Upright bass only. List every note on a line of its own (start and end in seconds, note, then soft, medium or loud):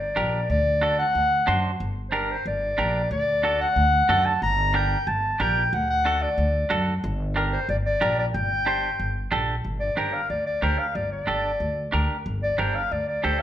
0.00 0.10 G1 medium
0.17 0.43 A#1 loud
0.50 1.02 D2 loud
1.15 1.41 D2 loud
1.48 1.74 F#2 loud
1.80 2.33 G1 loud
2.46 2.72 G1 loud
2.78 3.04 A#1 loud
3.11 3.63 D2 loud
3.76 4.02 D2 loud
4.09 4.35 F#2 loud
4.42 4.94 G1 loud
5.07 5.33 G1 loud
5.40 5.66 A#1 loud
5.73 6.25 D2 loud
6.38 6.64 D2 medium
6.71 6.97 F#2 loud
7.04 7.56 G1 loud
7.69 7.95 G1 loud
8.02 8.28 A#1 loud
8.34 8.86 G1 loud
8.99 9.26 G1 loud
9.32 9.58 A#1 loud
9.65 9.91 G1 medium
9.97 10.23 G1 medium
10.30 10.56 D2 medium
10.62 10.76 D2 medium
10.95 11.21 G1 medium
11.28 11.54 G1 medium
11.60 11.87 D2 medium
11.94 12.07 D2 medium
12.26 12.52 G1 loud
12.58 12.85 G1 medium
12.92 13.18 D2 medium
13.24 13.37 D2 medium